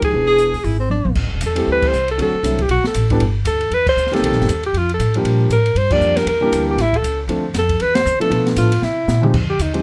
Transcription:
Already playing: grand piano F3 G#3 D#4 G4
0.02 alto saxophone G#4, muted upright bass stroke, kick, ride
0.12 upright bass E1, grand piano E3 B3 D4 G#4
0.27 tenor saxophone G#4
0.38 closed hi-hat
0.53 upright bass D2, open hi-hat
0.64 upright bass G#1, tenor saxophone E4, open hi-hat
0.79 tenor saxophone C4
0.90 tenor saxophone D4, high tom
1.05 upright bass A#1, high tom
1.15 upright bass A1, kick, crash
1.25 upright bass G1
1.33 upright bass E1
1.41 upright bass E2, hi-hat pedal, ride
1.46 alto saxophone A4
1.55 grand piano E3 G3 A3 C4 G4, ride
1.67 upright bass D2
1.72 alto saxophone B4
1.82 kick, crash
1.88 alto saxophone C5
1.93 upright bass C2, hi-hat pedal
2.08 alto saxophone A4, ride
2.18 upright bass D2, grand piano D3 F#3 A3 C4 F#4, ride
2.22 alto saxophone A4
2.34 muted upright bass stroke
2.43 upright bass C2, grand piano D3 F#3 A3 C4 E4, hi-hat pedal, ride
2.59 alto saxophone G4, kick, ride
2.69 upright bass B1, alto saxophone F#4, ride
2.84 alto saxophone A4, muted upright bass stroke, snare
2.94 upright bass A1, hi-hat pedal, ride
3.10 grand piano E3 G3 B3 D4 A4, kick, ride
3.20 upright bass G1, ride
3.45 upright bass D2, alto saxophone A4, hi-hat pedal, ride
3.61 ride
3.71 upright bass E2, alto saxophone B4, ride
3.87 alto saxophone C5, kick, crash
3.96 upright bass D2, hi-hat pedal
4.06 snare
4.11 grand piano D#3 G3 A#3 C4 G4, alto saxophone A4, ride
4.15 snare
4.22 upright bass C2, ride
4.26 alto saxophone A4
4.31 upright bass A#1, snare
4.39 upright bass G1, snare
4.48 upright bass D#2, hi-hat pedal, ride
4.63 alto saxophone G4, ride
4.73 upright bass F2, ride
4.78 alto saxophone F4
4.89 ride
4.94 alto saxophone A4
4.99 upright bass A2, hi-hat pedal, ride
5.14 grand piano F3 G3 A#3 D4 G4, ride
5.24 upright bass A#2, ride
5.50 upright bass A2, alto saxophone A#4, hi-hat pedal, ride
5.66 ride
5.75 upright bass G2, alto saxophone C5, ride
5.90 grand piano F3 G3 A#3 D4 G4, alto saxophone D5, kick, crash
6.01 upright bass F2, hi-hat pedal
6.17 alto saxophone A#4, snare, ride
6.26 upright bass E2, alto saxophone A#4, ride
6.41 grand piano E3 G3 A#3 D4 G4
6.52 upright bass D2, hi-hat pedal, ride
6.71 alto saxophone G4
6.76 upright bass A1, snare, ride
6.81 alto saxophone E4
6.93 alto saxophone A4, kick, ride
7.02 upright bass C#2, hi-hat pedal, ride
7.28 upright bass D2, grand piano F3 A3 C4 D4 A4, ride
7.53 upright bass F2, snare, hi-hat pedal, ride
7.59 alto saxophone A4
7.69 kick, ride
7.80 upright bass E2, alto saxophone B4, ride
7.95 alto saxophone C5, snare, ride
8.05 upright bass D2, hi-hat pedal
8.20 grand piano F3 A3 B3 D4 A4, alto saxophone A4, muted upright bass stroke, ride
8.30 upright bass B2, grand piano F3 A3 B3 D4 A4, ride
8.47 snare, ride
8.56 upright bass A2, alto saxophone F4, hi-hat pedal, ride
8.72 ride
8.82 upright bass C3, alto saxophone E4, snare
9.08 upright bass A#2, snare, hi-hat pedal
9.21 grand piano F3 G#3 C4 D#4 G4, mid tom
9.34 upright bass F2, kick, crash
9.50 alto saxophone G4
9.59 upright bass D#2, alto saxophone D#4, hi-hat pedal, ride
9.73 grand piano F3 G#3 C4 D#4 G4, ride

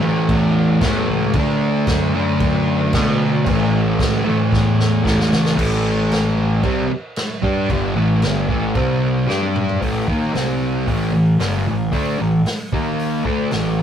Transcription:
Already playing: picked electric bass D2
0.01 distorted electric guitar E3 A3
0.05 distorted electric guitar A2
0.29 picked electric bass E2, kick, crash
0.81 picked electric bass E2, distorted electric guitar A2 E3, kick, snare, crash
0.85 distorted electric guitar A3
1.09 picked electric bass C#2
1.34 picked electric bass D2, distorted electric guitar D3, kick, crash
1.38 distorted electric guitar A3 D4
1.87 picked electric bass F#2, kick, snare, crash
2.14 distorted electric guitar D3 A3 D4
2.40 picked electric bass F#2, kick, crash
2.93 picked electric bass B2, distorted electric guitar D3 A3, kick, snare, crash
2.97 distorted electric guitar D4
3.46 picked electric bass A1, distorted electric guitar A2 E3, kick, crash
3.50 distorted electric guitar A3
3.99 picked electric bass D2, kick, snare, crash
4.24 distorted electric guitar E3 A3
4.29 distorted electric guitar A2
4.52 picked electric bass E2, kick, snare
4.80 snare
5.03 picked electric bass E2, distorted electric guitar A2 E3 A3, kick
5.07 snare
5.21 snare
5.33 picked electric bass C#2, snare
5.46 snare
5.56 picked electric bass A1, distorted electric guitar A2 E3 A3, kick, crash
6.12 snare, crash
6.63 picked electric bass C2, distorted electric guitar C3 G3 C4, kick, crash
6.89 muted distorted electric guitar stroke, muted picked electric bass stroke
7.16 snare, crash
7.42 picked electric bass G2, distorted electric guitar G3 D4 G4, kick
7.69 picked electric bass G1, distorted electric guitar G2 D3 G3, kick, crash
7.96 picked electric bass A1, distorted electric guitar A2 E3 A3
8.22 picked electric bass G1, distorted electric guitar G2 D3 G3, snare, crash
8.49 picked electric bass A1, distorted electric guitar A2 E3 A3, kick
8.75 picked electric bass C2, distorted electric guitar C3 G3 C4, kick, crash
9.27 picked electric bass G2, distorted electric guitar G3 D4 G4, snare
9.43 high tom
9.56 mid tom
9.69 floor tom
9.81 picked electric bass A1, distorted electric guitar A2 E3 A3, kick, open hi-hat
10.08 picked electric bass D#2, distorted electric guitar D#3 A#3 D#4, kick
10.34 picked electric bass C2, distorted electric guitar C3 G3 C4, snare, open hi-hat
10.87 picked electric bass A1, distorted electric guitar A2 E3 A3, kick, open hi-hat
11.13 picked electric bass A1, distorted electric guitar A2 E3
11.39 picked electric bass G1, distorted electric guitar G2 D3 G3, snare, open hi-hat
11.66 picked electric bass A1, distorted electric guitar A2 E3
11.92 picked electric bass D2, distorted electric guitar D3 A3 D4, kick, open hi-hat
12.19 picked electric bass A1, distorted electric guitar A2 E3
12.46 snare, open hi-hat
12.73 picked electric bass D#2, distorted electric guitar D#3 A#3 D#4, kick
12.99 open hi-hat
13.24 picked electric bass D2, distorted electric guitar D3 A3 D4, kick
13.51 picked electric bass A1, distorted electric guitar A2 E3 A3, snare, open hi-hat
13.79 distorted electric guitar E3

